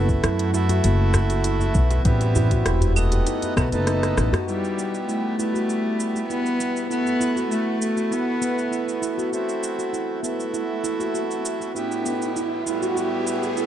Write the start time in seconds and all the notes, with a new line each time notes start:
Already playing: F#1 A3 E4 F#4
0.09 kick, cabasa
0.24 F#2 E4, cross-stick, closed hi-hat, cabasa
0.39 closed hi-hat
0.52 A3 E4 F#4, djembe slap, cabasa
0.69 F#4, closed hi-hat, djembe tone, cabasa
0.84 F#1 F#4, closed hi-hat, cabasa
1.14 cross-stick, djembe tone, djembe bass, cabasa
1.30 F#4, closed hi-hat, cabasa
1.44 E4, closed hi-hat, cabasa
1.60 djembe tone, cabasa
1.75 B1 B3, kick, cabasa
1.91 closed hi-hat, djembe slap, cabasa
2.03 A1 B3 C4 E4, kick, closed hi-hat, cabasa
2.07 G3
2.21 closed hi-hat, djembe slap, djembe tone, cabasa
2.35 E4, djembe slap, djembe bass, cabasa
2.51 F#4, kick, closed hi-hat, cabasa
2.66 E1 G4, cross-stick, closed hi-hat, cabasa
2.81 closed hi-hat, djembe bass, cabasa
2.94 A3 B3 D#5 F#5, djembe slap, cabasa, claves
3.12 G4, closed hi-hat, djembe tone, cabasa
3.26 D#4, closed hi-hat, cabasa
3.42 closed hi-hat, djembe tone, cabasa
3.56 B1 A3 B3 D#4 F#4, kick, cross-stick, cabasa, claves
3.70 F#1 A3 B3 D#4 A4, closed hi-hat, cabasa
3.87 D#4, cross-stick, closed hi-hat, cabasa
4.03 cross-stick, closed hi-hat, cabasa
4.17 A1 D#4, cross-stick, djembe tone, cabasa
4.33 F#4, cross-stick, closed hi-hat, djembe bass, cabasa
4.45 G3 B3 E4 G4, cabasa
4.64 cabasa
4.78 B3, cabasa
4.94 cabasa
5.08 A3 E4, cabasa
5.37 G3 B3 E4, cabasa
5.54 F#4, cabasa
5.69 G4, cabasa
6.00 cabasa
6.15 G4, cabasa
6.30 B3 E4, cabasa
6.46 cabasa
6.60 B3, cabasa
6.77 cabasa
6.88 A3 B3 E4, cabasa
6.92 F#4
7.07 cabasa
7.21 E4, cabasa
7.36 F#4, cabasa
7.51 A3 F#4, cabasa
7.80 A3 B3 E4 F#4, cabasa
7.96 F#4, cabasa
8.11 B3 E4, cabasa
8.41 B3, cabasa
8.58 cabasa
8.72 E4, cabasa
8.89 cabasa
9.02 E4, cabasa
9.18 F#4, cabasa
9.31 A3 C4 E4 F#4, riser, cabasa
9.49 cabasa
9.63 cabasa
9.79 F#4, cabasa
9.93 E4, cabasa
10.21 A3 B3 E4, cabasa
10.26 F#4
10.40 cabasa
10.53 E4, cabasa
10.84 E4, cabasa
11.00 F#4, cabasa
11.14 F#4, cabasa
11.31 cabasa
11.45 cabasa
11.61 F#4, cabasa
11.73 A2 B3 E4 G4, cabasa
11.92 cabasa
12.06 B3, cabasa
12.22 cabasa
12.36 E4, cabasa
12.65 A2 G3 B3 E4, cabasa
12.82 F#4, cabasa
12.97 G4, cabasa
13.27 cabasa
13.43 G4, cabasa
13.57 E4, cabasa